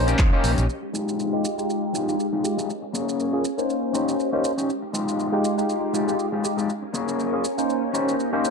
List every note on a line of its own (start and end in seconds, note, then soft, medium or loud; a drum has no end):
0.00 0.13 A#1 medium
0.00 0.29 A#3 medium
0.00 0.30 C#4 medium
0.00 0.67 C#4 medium
0.00 0.30 D#4 medium
0.00 0.68 G4 medium
0.00 0.30 C5 medium
0.00 0.68 D#5 medium
0.07 0.19 C#4 loud
0.07 0.19 D#4 loud
0.07 0.19 G4 loud
0.07 closed hi-hat medium
0.07 tambourine soft
0.07 shaker soft
0.19 0.29 D#2 medium
0.19 kick loud
0.19 clap loud
0.19 closed hi-hat medium
0.19 shaker soft
0.33 0.50 A#3 medium
0.33 0.63 C#4 medium
0.33 0.51 C#4 medium
0.33 0.51 D#4 medium
0.33 0.64 D#4 medium
0.33 0.64 G4 loud
0.33 0.51 C5 loud
0.33 tambourine soft
0.43 0.54 A#1 medium
0.43 open hi-hat loud
0.43 tambourine medium
0.43 shaker medium
0.58 0.66 A#1 medium
0.58 closed hi-hat medium
0.58 tambourine soft
0.58 shaker soft
0.69 2.67 G#3 medium
0.69 2.67 D#4 medium
0.69 2.67 G4 medium
0.69 2.67 F5 medium
0.69 shaker soft
0.83 muted clean electric guitar stroke soft
0.93 1.44 G#3 loud
0.93 1.44 D#4 medium
0.93 1.44 F4 medium
0.93 1.44 G4 loud
0.93 shaker medium
1.09 shaker soft
1.20 shaker soft
1.33 1.54 G#3 medium
1.33 1.55 D#4 medium
1.33 1.55 F4 medium
1.33 1.55 G4 loud
1.45 shaker medium
1.58 2.05 G#3 medium
1.58 2.05 D#4 medium
1.58 2.05 F4 medium
1.58 2.05 G4 medium
1.58 shaker soft
1.70 shaker soft
1.93 2.13 G#3 loud
1.93 2.13 D#4 medium
1.93 2.14 F4 medium
1.93 2.14 G4 loud
1.93 shaker medium
2.08 2.26 G#3 medium
2.08 2.26 D#4 medium
2.08 2.26 F4 medium
2.08 2.26 G4 medium
2.08 shaker soft
2.20 shaker soft
2.33 2.44 G#3 medium
2.33 2.44 D#4 medium
2.33 2.44 F4 medium
2.33 2.44 G4 medium
2.44 2.57 G#3 medium
2.44 2.57 D#4 medium
2.44 2.57 F4 medium
2.44 2.57 G4 medium
2.44 shaker medium
2.57 2.69 G#3 medium
2.57 2.69 D#4 medium
2.57 2.69 F4 medium
2.57 2.69 G4 medium
2.57 shaker soft
2.69 4.67 C#4 medium
2.69 3.68 A#4 medium
2.69 3.68 G#5 medium
2.69 shaker soft
2.82 muted clean electric guitar stroke soft
2.93 3.44 A#3 loud
2.93 3.44 C#4 medium
2.93 3.44 G#4 loud
2.93 shaker medium
3.09 shaker soft
3.20 shaker soft
3.33 3.43 A#3 medium
3.33 3.43 C#4 medium
3.33 3.43 F4 medium
3.33 3.43 G#4 medium
3.45 shaker medium
3.58 3.91 A#3 medium
3.58 3.91 C#4 medium
3.58 3.91 D#4 medium
3.58 3.92 C5 medium
3.58 shaker soft
3.69 6.66 G4 medium
3.69 4.68 D#5 medium
3.69 shaker soft
3.93 4.30 A#3 medium
3.93 4.13 C#4 loud
3.93 4.30 C#4 medium
3.93 4.13 D#4 medium
3.93 4.30 D#4 medium
3.93 4.14 G4 loud
3.93 4.30 C5 medium
3.93 shaker medium
4.09 shaker soft
4.20 shaker soft
4.33 4.50 A#3 medium
4.33 4.44 C#4 medium
4.33 4.51 C#4 medium
4.33 4.44 D#4 medium
4.33 4.51 D#4 medium
4.33 4.44 G4 medium
4.33 4.51 C5 loud
4.44 shaker medium
4.58 4.69 C#4 medium
4.58 4.69 D#4 medium
4.58 4.69 G4 medium
4.58 shaker soft
4.69 6.67 G#3 medium
4.69 6.67 D#4 medium
4.69 6.67 F5 medium
4.69 shaker soft
4.82 muted clean electric guitar stroke soft
4.93 5.44 G#3 loud
4.93 5.44 D#4 medium
4.93 5.44 F4 medium
4.93 5.44 G4 medium
4.93 shaker medium
5.09 shaker soft
5.19 shaker soft
5.32 5.54 G#3 medium
5.32 5.54 D#4 medium
5.32 5.55 F4 medium
5.32 5.55 G4 loud
5.45 shaker medium
5.57 6.04 G#3 medium
5.57 6.04 D#4 medium
5.57 6.05 F4 medium
5.57 6.05 G4 medium
5.57 shaker soft
5.69 shaker soft
5.93 6.13 G#3 loud
5.93 6.13 D#4 medium
5.93 6.14 F4 loud
5.93 6.14 G4 loud
5.93 shaker medium
6.07 6.25 G#3 medium
6.07 6.26 D#4 medium
6.07 6.26 F4 medium
6.07 6.26 G4 medium
6.07 shaker soft
6.19 shaker soft
6.32 6.44 G#3 medium
6.32 6.44 D#4 medium
6.32 6.44 F4 medium
6.32 6.44 G4 medium
6.44 6.57 G#3 medium
6.44 6.57 D#4 medium
6.44 6.57 F4 medium
6.44 6.57 G4 medium
6.44 shaker medium
6.57 6.69 G#3 medium
6.57 6.69 D#4 medium
6.57 6.69 F4 medium
6.57 6.69 G4 medium
6.57 shaker soft
6.69 8.50 C#4 medium
6.69 7.68 A#4 medium
6.69 7.68 G#5 medium
6.69 tambourine soft
6.69 shaker soft
6.82 muted clean electric guitar stroke soft
6.93 7.44 A#3 loud
6.93 7.44 C#4 medium
6.93 7.44 G#4 loud
6.93 shaker medium
7.08 shaker soft
7.19 shaker soft
7.33 7.43 A#3 medium
7.33 7.43 C#4 medium
7.33 7.43 F4 medium
7.33 7.43 G#4 medium
7.44 shaker medium
7.58 7.91 A#3 medium
7.58 7.91 C#4 medium
7.58 7.92 D#4 medium
7.58 7.92 C5 medium
7.58 shaker soft
7.69 8.50 G4 medium
7.69 8.50 D#5 medium
7.69 tambourine soft
7.69 shaker soft
7.83 tambourine soft
7.93 8.30 A#3 medium
7.93 8.13 C#4 loud
7.93 8.30 C#4 medium
7.93 8.13 D#4 loud
7.93 8.30 D#4 medium
7.93 8.14 G4 loud
7.93 8.30 C5 medium
7.93 tambourine medium
7.93 shaker medium
8.09 shaker soft
8.20 shaker soft
8.33 8.50 A#3 medium
8.33 8.44 C#4 medium
8.33 8.50 C#4 medium
8.33 8.44 D#4 medium
8.33 8.50 D#4 medium
8.33 8.44 G4 medium
8.33 8.50 C5 loud
8.44 tambourine medium
8.44 shaker medium